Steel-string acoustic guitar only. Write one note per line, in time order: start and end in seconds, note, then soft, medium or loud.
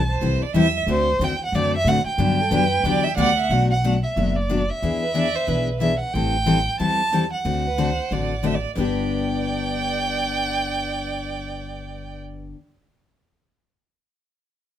0.21 0.42 E3 medium
0.21 0.42 G3 medium
0.21 0.43 C4 medium
0.21 0.42 E4 medium
0.21 0.43 A4 medium
0.54 0.66 E3 medium
0.54 0.66 G3 medium
0.54 0.66 C4 medium
0.54 0.66 E4 medium
0.54 0.66 A4 medium
0.87 1.08 D3 medium
0.87 1.08 A3 medium
0.87 1.09 C4 medium
0.87 1.08 F#4 medium
0.87 1.08 A4 medium
1.21 1.32 D3 medium
1.21 1.32 A3 medium
1.21 1.32 C4 medium
1.21 1.32 F#4 medium
1.21 1.32 A4 loud
1.54 1.74 D3 medium
1.54 1.75 A3 medium
1.54 1.75 C4 medium
1.54 1.75 F#4 medium
1.54 1.75 A4 medium
1.87 1.98 D3 medium
1.87 1.98 A3 medium
1.87 1.98 C4 medium
1.87 1.98 F#4 loud
1.87 1.98 A4 loud
2.18 2.39 D3 medium
2.18 2.39 F#3 medium
2.18 2.39 B3 medium
2.18 2.40 D4 medium
2.18 2.40 G4 medium
2.51 2.63 D3 medium
2.51 2.63 F#3 loud
2.51 2.63 B3 medium
2.51 2.63 D4 medium
2.51 2.63 G4 medium
2.85 3.05 D3 medium
2.85 3.05 F#3 medium
2.85 3.05 B3 medium
2.85 3.06 D4 medium
2.85 3.06 G4 medium
3.17 3.29 D3 medium
3.17 3.29 F#3 medium
3.17 3.29 B3 medium
3.17 3.29 D4 loud
3.17 3.29 G4 loud
3.50 3.71 B2 medium
3.50 3.71 F#3 medium
3.50 3.71 A3 medium
3.50 3.71 D4 medium
3.50 3.72 F#4 medium
3.84 3.95 B2 medium
3.84 3.95 F#3 medium
3.84 3.95 A3 medium
3.84 3.95 D4 medium
3.84 3.95 F#4 medium
4.17 4.37 B2 medium
4.17 4.37 F#3 medium
4.17 4.37 A3 medium
4.17 4.37 D4 medium
4.17 4.38 F#4 medium
4.49 4.60 B2 medium
4.49 4.60 F#3 medium
4.49 4.61 A3 medium
4.49 4.61 D4 medium
4.49 4.61 F#4 medium
4.83 5.03 E3 medium
4.83 5.03 B3 medium
4.83 5.03 D4 medium
4.83 5.03 G#4 medium
5.14 5.26 E3 medium
5.14 5.26 B3 medium
5.14 5.26 D4 medium
5.14 5.26 G#4 medium
5.47 5.68 E3 medium
5.47 5.68 B3 medium
5.47 5.69 D4 medium
5.47 5.69 G#4 medium
5.80 5.92 E3 medium
5.80 5.92 B3 medium
5.80 5.92 D4 medium
5.80 5.92 G#4 medium
6.15 6.35 E3 medium
6.15 6.35 G3 medium
6.15 6.35 C4 medium
6.15 6.35 E4 medium
6.15 6.36 A4 medium
6.46 6.57 E3 medium
6.46 6.58 G3 medium
6.46 6.58 C4 medium
6.46 6.58 E4 medium
6.46 6.58 A4 medium
6.79 7.00 E3 medium
6.79 7.00 G3 medium
6.79 7.00 C4 medium
6.79 7.00 E4 medium
6.79 7.01 A4 medium
7.12 7.24 E3 medium
7.12 7.24 G3 medium
7.12 7.24 C4 medium
7.12 7.24 E4 medium
7.12 7.24 A4 medium
7.45 7.66 D3 medium
7.45 7.66 A3 medium
7.45 7.66 C4 medium
7.45 7.66 F#4 medium
7.45 7.66 A4 medium
7.78 7.89 D3 medium
7.78 7.90 A3 medium
7.78 7.89 C4 medium
7.78 7.90 F#4 medium
7.78 7.90 A4 medium
8.11 8.32 D3 medium
8.11 8.32 A3 medium
8.11 8.32 C4 medium
8.11 8.32 F#4 medium
8.11 8.33 A4 medium
8.43 8.55 D3 medium
8.43 8.55 A3 medium
8.43 8.55 C4 medium
8.43 8.55 F#4 medium
8.43 8.56 A4 medium
8.75 12.54 G2 medium
8.75 12.55 D3 medium
8.75 12.56 B3 medium
8.75 12.57 D4 medium
8.75 12.57 G4 medium